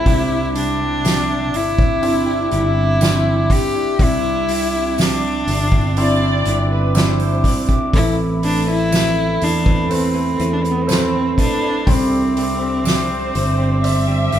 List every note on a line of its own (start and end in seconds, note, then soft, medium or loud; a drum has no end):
0.00 0.53 E4 loud
0.05 1.54 C2 medium
0.05 0.55 C3 medium
0.05 3.96 C3 medium
0.05 0.54 G3 medium
0.05 14.39 C4 medium
0.05 0.55 D4 medium
0.05 0.56 E4 medium
0.05 0.56 G4 medium
0.05 7.89 E5 medium
0.05 7.89 D6 medium
0.05 kick medium
0.05 hi-hat pedal medium
0.05 open hi-hat medium
0.55 0.80 G3 medium
0.55 0.80 D4 medium
0.55 1.58 D4 medium
0.55 0.80 E4 medium
0.55 0.78 G4 medium
0.55 hi-hat pedal medium
0.55 open hi-hat medium
0.79 1.03 D4 soft
0.79 1.04 E4 soft
0.79 1.04 G4 medium
1.04 1.29 C3 medium
1.04 1.29 G3 medium
1.04 1.29 D4 medium
1.04 1.29 E4 medium
1.04 1.27 G4 medium
1.04 snare loud
1.04 hi-hat pedal medium
1.04 open hi-hat medium
1.04 tambourine medium
1.28 2.28 D4 soft
1.28 2.27 E4 soft
1.28 2.25 G4 soft
1.54 2.48 G1 medium
1.54 2.53 E4 medium
1.54 hi-hat pedal medium
1.54 open hi-hat medium
1.78 kick loud
2.02 2.98 C4 soft
2.02 2.98 D4 soft
2.02 2.98 E4 medium
2.02 hi-hat pedal medium
2.02 open hi-hat medium
2.26 2.51 D4 soft
2.26 2.51 E4 soft
2.26 2.52 G4 soft
2.51 3.47 G1 medium
2.51 3.00 G3 medium
2.51 3.00 D4 medium
2.51 3.01 E4 medium
2.51 3.54 E4 loud
2.51 3.01 G4 medium
2.51 hi-hat pedal medium
2.51 open hi-hat medium
3.00 3.50 C3 medium
3.00 3.48 G3 medium
3.00 3.97 C4 soft
3.00 3.48 D4 medium
3.00 3.97 D4 soft
3.00 3.49 E4 medium
3.00 3.97 E4 medium
3.00 3.50 G4 medium
3.00 snare loud
3.00 hi-hat pedal medium
3.00 open hi-hat medium
3.00 tambourine medium
3.49 3.74 G3 medium
3.49 3.75 D4 medium
3.49 3.74 E4 medium
3.49 3.72 G4 medium
3.49 4.05 G4 medium
3.49 kick medium
3.49 hi-hat pedal medium
3.49 open hi-hat medium
3.74 3.98 D4 soft
3.74 3.98 E4 soft
3.74 3.99 G4 medium
3.99 5.43 C2 loud
3.99 4.48 C3 medium
3.99 7.89 C3 medium
3.99 4.48 G3 medium
3.99 4.49 D4 medium
3.99 4.49 E4 medium
3.99 4.49 G4 medium
3.99 kick medium
3.99 hi-hat pedal medium
3.99 open hi-hat medium
4.03 5.03 E4 loud
4.48 4.73 G3 medium
4.48 4.74 D4 medium
4.48 4.73 E4 medium
4.48 4.72 G4 medium
4.48 hi-hat pedal medium
4.48 open hi-hat medium
4.73 4.98 D4 soft
4.73 4.98 E4 medium
4.73 4.98 G4 medium
4.98 5.23 C3 medium
4.98 5.23 G3 medium
4.98 5.23 D4 medium
4.98 6.47 D4 medium
4.98 5.22 E4 medium
4.98 5.21 G4 medium
4.98 snare loud
4.98 hi-hat pedal medium
4.98 open hi-hat medium
4.98 tambourine medium
5.22 5.73 D4 soft
5.22 5.72 E4 soft
5.22 5.71 G4 soft
5.47 6.42 G1 medium
5.47 hi-hat pedal medium
5.47 open hi-hat medium
5.72 6.22 D4 soft
5.72 6.21 E4 soft
5.72 6.20 G4 soft
5.72 kick loud
5.96 6.92 C4 medium
5.96 6.92 D4 soft
5.96 6.93 E4 medium
5.96 6.66 D5 loud
5.96 hi-hat pedal medium
5.96 open hi-hat medium
6.21 6.45 D4 soft
6.21 6.46 E4 soft
6.21 6.46 G4 medium
6.45 7.40 G1 medium
6.45 6.95 G3 medium
6.45 6.95 D4 medium
6.45 6.96 E4 medium
6.45 6.96 G4 medium
6.45 hi-hat pedal medium
6.45 open hi-hat medium
6.71 6.95 B4 medium
6.95 7.45 C3 medium
6.95 7.43 G3 loud
6.95 7.90 C4 soft
6.95 7.90 D4 soft
6.95 7.44 D4 medium
6.95 7.90 E4 medium
6.95 7.45 E4 medium
6.95 7.45 G4 loud
6.95 7.68 C5 medium
6.95 snare loud
6.95 hi-hat pedal medium
6.95 open hi-hat medium
6.95 tambourine medium
7.19 open hi-hat medium
7.44 7.69 G3 medium
7.44 7.69 D4 medium
7.44 7.69 E4 medium
7.44 7.67 G4 medium
7.44 kick medium
7.44 hi-hat pedal medium
7.44 open hi-hat medium
7.69 7.94 D4 soft
7.69 7.93 E4 medium
7.69 7.93 G4 medium
7.69 kick medium
7.69 hi-hat pedal medium
7.93 9.37 A1 loud
7.93 8.42 A2 medium
7.93 8.42 E3 medium
7.93 8.41 A3 medium
7.93 11.83 A3 medium
7.93 8.42 C4 medium
7.93 8.42 E4 medium
7.93 8.16 E4 loud
7.93 11.83 A4 medium
7.93 8.43 B4 medium
7.93 11.82 B5 medium
7.93 kick loud
7.93 hi-hat pedal medium
7.93 open hi-hat medium
8.42 8.67 A3 medium
8.42 8.67 C4 medium
8.42 8.66 D4 medium
8.42 8.66 E4 medium
8.42 8.66 B4 medium
8.42 hi-hat pedal medium
8.42 open hi-hat medium
8.67 8.91 A3 soft
8.67 8.91 C4 soft
8.67 8.92 E4 soft
8.67 9.45 E4 loud
8.67 8.91 B4 medium
8.91 9.16 A2 medium
8.91 9.16 E3 medium
8.91 9.16 A3 medium
8.91 9.16 C4 medium
8.91 9.16 E4 medium
8.91 9.15 B4 medium
8.91 snare loud
8.91 hi-hat pedal medium
8.91 open hi-hat medium
8.91 tambourine medium
9.16 9.66 A3 soft
9.16 9.66 C4 soft
9.16 9.65 E4 soft
9.16 9.64 B4 soft
9.41 10.36 E2 medium
9.41 9.91 D4 medium
9.41 hi-hat pedal medium
9.41 open hi-hat medium
9.65 10.15 A3 soft
9.65 10.14 C4 soft
9.65 10.14 E4 soft
9.65 10.13 B4 soft
9.65 kick loud
9.90 10.85 A4 soft
9.90 10.85 B4 soft
9.90 10.86 C5 medium
9.90 hi-hat pedal medium
9.90 open hi-hat medium
9.94 10.55 C4 medium
10.14 10.37 A3 soft
10.14 10.38 C4 soft
10.14 10.39 E4 soft
10.14 10.39 B4 soft
10.14 open hi-hat medium
10.38 11.34 E2 medium
10.38 10.88 A3 medium
10.38 10.88 C4 medium
10.38 10.88 E4 medium
10.38 10.88 B4 medium
10.38 hi-hat pedal medium
10.38 open hi-hat medium
10.53 10.64 D4 medium
10.62 10.73 C4 medium
10.62 hi-hat pedal medium
10.71 10.83 B3 medium
10.82 10.89 C4 medium
10.87 11.37 A2 medium
10.87 11.37 E3 medium
10.87 11.36 A3 medium
10.87 11.37 C4 medium
10.87 11.38 E4 medium
10.87 11.83 A4 soft
10.87 11.83 B4 soft
10.87 11.38 B4 medium
10.87 11.83 C5 medium
10.87 snare loud
10.87 hi-hat pedal medium
10.87 open hi-hat medium
10.87 tambourine medium
10.92 11.36 C4 medium
11.37 11.62 A3 medium
11.37 11.62 C4 medium
11.37 11.61 E4 medium
11.37 11.60 B4 medium
11.37 kick medium
11.37 hi-hat pedal medium
11.37 open hi-hat medium
11.41 11.92 D4 medium
11.62 11.87 A3 soft
11.62 11.87 C4 soft
11.62 11.87 E4 medium
11.62 11.86 B4 medium
11.87 13.31 C2 loud
11.87 12.36 C3 medium
11.87 12.36 E3 medium
11.87 12.34 G3 medium
11.87 14.39 C4 medium
11.87 12.35 C4 medium
11.87 14.39 C4 medium
11.87 12.37 D4 medium
11.87 12.37 G4 medium
11.87 14.39 E5 medium
11.87 14.39 D6 medium
11.87 kick loud
11.87 hi-hat pedal medium
11.87 open hi-hat medium
12.36 12.60 G3 medium
12.36 12.61 C4 medium
12.36 12.59 D4 medium
12.36 12.59 G4 medium
12.36 hi-hat pedal medium
12.36 open hi-hat medium
12.60 12.84 G3 soft
12.60 12.84 C4 soft
12.60 12.84 D4 soft
12.60 12.85 G4 medium
12.84 13.09 C3 medium
12.84 13.09 E3 medium
12.84 13.10 G3 medium
12.84 13.09 C4 medium
12.84 13.09 D4 medium
12.84 13.07 G4 medium
12.84 13.79 C5 medium
12.84 snare loud
12.84 hi-hat pedal medium
12.84 open hi-hat medium
12.84 tambourine medium
13.09 13.59 G3 soft
13.09 13.59 C4 soft
13.09 13.57 D4 soft
13.09 13.57 G4 medium
13.35 14.29 G1 medium
13.35 hi-hat pedal medium
13.35 open hi-hat medium
13.58 14.09 G3 soft
13.58 14.08 C4 soft
13.58 14.07 D4 soft
13.58 14.06 G4 soft
13.83 14.39 C5 soft
13.83 14.39 D5 soft
13.83 14.39 E5 loud
13.83 14.39 E5 medium
13.83 hi-hat pedal medium
13.83 open hi-hat medium
14.07 14.31 G3 soft
14.07 14.32 C4 soft
14.07 14.33 D4 soft
14.07 14.32 G4 medium
14.32 14.39 G1 medium
14.32 14.39 G3 medium
14.32 14.39 C4 medium
14.32 14.39 D4 medium
14.32 14.39 G4 medium
14.32 hi-hat pedal medium
14.32 open hi-hat medium